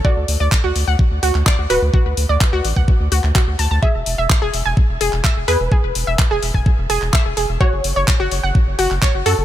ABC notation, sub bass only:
X:1
M:4/4
L:1/16
Q:1/4=127
K:Dlyd
V:1 name="Sub bass" clef=bass
z D,, D,, D,, z D,, D,, D,, z D,, D,, D,, z D,, D,,, D,, | z D,, D,, D,, z D,, A,,, D,, z D,, D,, D,, z D,, D,, D,, | z E,,, E,,, E,,, z E,,, E,,, E,,, z E,,, E,,, E,,, z E,,, E,, E,,, | z E,,, E,,, E,,, z E,,, E,,, E,,, z E,,, E,,, E,,, z E,,, E,,, E,,, |
z F,,, F,,, F,,, z F,,, F,,, F,,, z F,,, F,,, F,,, z F,,, F,, F,,, |]